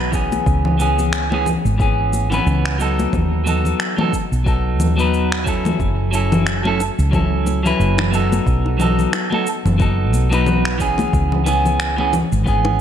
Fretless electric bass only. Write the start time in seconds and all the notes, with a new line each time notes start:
Already playing: B1
0.46 C#2
1.65 G#1
2.46 C#2
3.13 D#2
4.32 B1
4.80 D#2
5.80 F#1
6.99 C#2
7.80 F#1
8.47 B1
9.65 F#1
10.13 B1
11.13 C#2
12.32 G#1